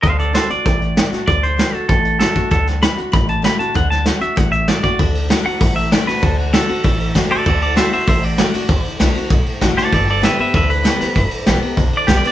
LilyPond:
<<
  \new Staff \with { instrumentName = "Clean electric guitar" } { \time 4/4 \key d \mixolydian \tempo 4 = 194 <c'' f''>8 <a' d''>8 <a' c''>8 d''2 r8 | d''8 c''4 a'8 a'4 a'4 | a'8 r8 b''8 r8 b''8 a''8 b''8 a''8 | fis''8 a''8 fis''8 e''8 fis''8 e''8 d''8 d''8 |
r4. fis''4 e''8 d''8 b'8 | a'8 fis'8 a'2 r8 <a' d''>8 | <a' d''>8 <a' d''>8 <c'' e''>8 <c'' e''>8 <c'' e''>8 d''4.~ | d''8 r2. <a' d''>8 |
<a' d''>8 <a' d''>8 <b' e''>8 <b' e''>8 <b' e''>8 b'4.~ | b'8 r4. \tuplet 3/2 { r4 d''8 g'8 d''8 d''8 } | }
  \new Staff \with { instrumentName = "Steel-string acoustic guitar" } { \time 4/4 \key d \mixolydian << { r4 <d a d' fis'>8 <d' fis'>8 r4 <d a d' fis'>8 <d' fis'>8 | r4 <d a d' fis'>8 <d' fis'>8 r4 <d a d' fis'>8 <d' fis'>8 | r4 <d a d' fis'>8 <d' fis'>8 r4 <d a d' fis'>8 <d' fis'>8 | r4 <d a d' fis'>8 <d' fis'>8 r4 <d a d' fis'>8 <d' fis'>8 |
r4 <d a d' fis'>8 <d' fis'>8 r4 <d a d' fis'>8 <d' fis'>8 | r4 <d a d' fis'>8 <d' fis'>8 r4 <d a d' fis'>8 <d' fis'>8 | r4 <d a d' fis'>8 <d' fis'>8 r4 <d a d' fis'>8 <d' fis'>8 | r4 <d a d' fis'>8 <d' fis'>8 r4 <d a d' fis'>4 |
r4 <d g b g'>8 <b g'>8 r4 <d g b g'>8 <b g'>8 | r4 <d g b g'>8 <b g'>8 r4 <d g b g'>8 <b g'>8 | } \\ { d2 a,2 | d2 a,2 | d2 a,2 | d2 a,2 |
d2 a,2 | d2 a,2 | d2 a,2 | d2 a,2 |
g,2 d2 | g,2 d2 | } >> }
  \new Staff \with { instrumentName = "Upright bass" } { \clef bass \time 4/4 \key d \mixolydian d,4. r8 a,,4. r8 | d,4. r8 a,,4. r8 | d,4. r8 a,,4. r8 | d,4. r8 a,,4. r8 |
d,4. r8 a,,4. r8 | d,4. r8 a,,4. r8 | d,4. r8 a,,4. r8 | d,8 r8 c,8 r8 b,,8 r8 a,,8 r8 |
g,,4. r8 d,4. r8 | g,,8 r8 a,,8 r8 b,,8 r8 c,8 r8 | }
  \new DrumStaff \with { instrumentName = "Drums" } \drummode { \time 4/4 <hh bd>8 hh8 <hh sn>8 hh8 <hh bd sn>8 hh8 <hh sn>8 <hh sn>8 | <hh bd>8 hh8 <hh sn>8 hh8 <hh bd>8 hh8 <hh sn>8 <hh bd>8 | <hh bd>8 <hh sn>8 <hh sn>8 hh8 <hh bd>8 hh8 <hh sn>8 hh8 | <hh bd>8 <hh sn>8 <hh sn>8 hh8 <hh bd>8 hh8 <hh sn>8 <hh bd>8 |
<bd cymr>8 cymr8 <cymr sn>8 cymr8 <bd cymr>8 cymr8 <cymr sn>8 <cymr sn>8 | <bd cymr>8 cymr8 <cymr sn>8 cymr8 <bd cymr>8 cymr8 <bd cymr sn>8 cymr8 | <bd cymr>8 cymr8 <cymr sn>8 cymr8 <bd cymr>8 cymr8 <cymr sn>8 <cymr sn>8 | <bd cymr>8 cymr8 <cymr sn>8 cymr8 <bd cymr>8 cymr8 <bd cymr sn>8 <cymr sn>8 |
<bd cymr>8 cymr8 <cymr sn>8 cymr8 <bd cymr>8 cymr8 <cymr sn>8 <cymr sn>8 | <bd cymr>8 cymr8 <cymr sn>8 cymr8 <bd cymr>8 cymr8 <bd cymr sn>8 <cymr sn>8 | }
>>